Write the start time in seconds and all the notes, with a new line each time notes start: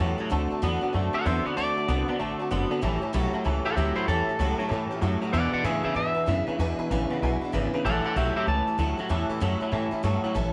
Already playing: A5
0.00 E2 A2 E3 F#3 G3 C#4 G4 A4 C#5 E5 A5
0.18 A2 F#3 G3 C#4 G4 A4 C#5 E5 A5, muted upright bass stroke
0.30 D2 D3 A3 C4 F#4 A4 D5 F#5 A5
0.50 C4 F#4 A4 D5 F#5 A5, muted upright bass stroke
0.62 E2 D3 A3 B3 C4 F#4 A4 D5 F#5 A5
0.81 D3 B3 C4 F#4 A4 D5 F#5 A5, muted upright bass stroke
0.93 F#2 D3 A3 C4 F#4 A4 D5 F#5 A5
1.13 C4 F#4 A4 D5 F#5 A5, muted upright bass stroke
1.25 E2 D3 A3 B3 C4 F#4 A4 C5 D5 E5 F#5 A5
1.45 D3 B3 C4 F#4 A4 D5 F#5 A5, muted upright bass stroke
1.56 D2 D3 A3 C4 F#4 A4 D5 F#5 A5
1.76 C4 F#4 A4 F#5, muted upright bass stroke
1.87 C2 D3 A3 B3 C4 F#4 A4 D5 F#5 A5
2.08 D3 B3 C4 F#4 A4 D5 F#5 A5, muted upright bass stroke
2.19 A1 D3 A3 C4 F#4 A4 D5 F#5 A5
2.39 C4 F#4 A4 D5 F#5 A5, muted upright bass stroke
2.51 F#1 D3 A3 B3 C4 F#4 A4 D5 F#5 A5 C6
2.71 D3 B3 C4 F#4 A4 D5 F#5 A5, muted upright bass stroke
2.81 A1 A2 E3 G3 C#4 G4 A4 C#5 E5 A5
3.02 G3 C#4 G4 A4 C#5 E5 A5, muted upright bass stroke
3.13 B1 A2 E3 F#3 G3 C#4 G4 A4 C#5 E5 B5
3.33 A2 F#3 G3 C#4 G4 A4 C#5 E5 A5, muted upright bass stroke
3.44 C#2 A2 E3 G3 C#4 G4 A4 C#5 E5 A5
3.65 G3 C#4 G4 A4 C#5 E5 F#5 A5, muted upright bass stroke
3.75 D2 A2 E3 F#3 G3 C#4 G4 A4 C#5 E5 A5
3.95 A2 F#3 G3 C#4 E4 G4 A4 C5 C#5 E5 A5, muted upright bass stroke
4.07 E2 A2 E3 G3 C#4 G4 A4 C#5 E5 A5
4.27 C#4 G4 A4 C#5 E5 A5, muted upright bass stroke
4.39 C#2 A2 E3 F#3 G3 C#4 G4 A4 C#5 E5 A5
4.58 A2 F#3 G3 C#4 G4 A4 C#5 E5 A5, muted upright bass stroke
4.69 A2 E3 G3 C#4 G4 C#5 E5 A5
4.74 A4
4.89 C#4 G4 A4 C#5 E5 A5, muted upright bass stroke
4.93 G3
5.01 F#2 A2 E3 F#3 G3 C#4 G4 A4 C#5 E5 A5
5.21 A2 F#3 G3 C#4 G4 A4 C#5 E5 A5, muted upright bass stroke
5.32 E2 B2 E3 G#3 D4 E4 B4 D5 E5 F#5 G#5
5.52 D4 E4 B4 D5 E5 F#5 G#5, muted upright bass stroke
5.63 E2 A2 C#3 E3 G#3 D4 E4 G#4 B4 E5 G#5
5.83 E2 C#3 D4 E4 G#4 B4 E5 G#5, muted upright bass stroke
5.95 E2 G#2 B2 G#3 D4 E4 B4 E5 G#5
6.15 D4 E4 B4 E5 G#5, muted upright bass stroke
6.26 E2 F#2 C#3 E3 G#3 D4 E4 B4 E5 G#5
6.47 E2 C#3 D4 E4 B4 E5 G#5, muted upright bass stroke
6.58 E2 B2 E3 G#3 D4 E4 B4 E5 G#5
6.79 D4 E4 B4 E5 G#5, muted upright bass stroke
6.90 A1 E2 C#3 E3 G#3 D4 E4 B4 E5 G#5
7.10 E2 C#3 D4 E4 B4 E5 F#5, muted upright bass stroke
7.22 B1 E2 B2 G#3 D4 E4 B4 E5 G#5
7.41 D4 E4 B4 E5 F#5, muted upright bass stroke
7.52 G#1 E2 C#3 E3 G#3 D4 E4 B4 E5 G#5
7.73 E2 C#3 D4 E4 B4 E5 G#5, muted upright bass stroke
7.84 A1 A2 E3 G3 C#4 E4 A4 C#5 E5 F#5 A5
8.04 G3 C#4 E4 A4 C#5 E5 F#5 A5, muted upright bass stroke
8.15 B1 A2 E3 F#3 G3 C#4 E4 G4 A4 C#5 E5 A5
8.35 A2 F#3 G3 C#4 E4 G4 A4 C#5 E5 A5, muted upright bass stroke
8.46 C#2 A2 E3 G3 C#4 E4 A4 C#5 E5 A5
8.67 G3 C#4 E4 A4 C#5 E5 A5, muted upright bass stroke
8.78 D2 A2 E3 F#3 G3 C#4 E4 A4 C#5 E5 A5
8.97 A2 F#3 G3 C#4 E4 A4 C#5 E5 A5, muted upright bass stroke
9.09 E2 A2 E3 G3 C#4 E4 A4 C#5 E5 A5
9.29 G3 C#4 E4 A4 C#5 E5 A5, muted upright bass stroke
9.40 F#2 A2 E3 F#3 G3 C#4 E4 A4 C#5 E5 A5
9.60 A2 F#3 G3 C#4 E4 A4 C#5 E5 A5, muted upright bass stroke
9.72 A2 E3 G3 C#4 E4 A4 C#5 E5 A5
9.91 G3 C#4 E4 A4 C#5 E5 A5, muted upright bass stroke
10.03 G2 A2 E3 F#3 G3 C#4 E4 A4 C#5 E5 A5
10.23 A2 F#3 G3 C#4 E4 A4 C#5 E5 A5, muted upright bass stroke
10.34 A1 A2 E3 G3 C#4 E4 A4 C#5 E5 A5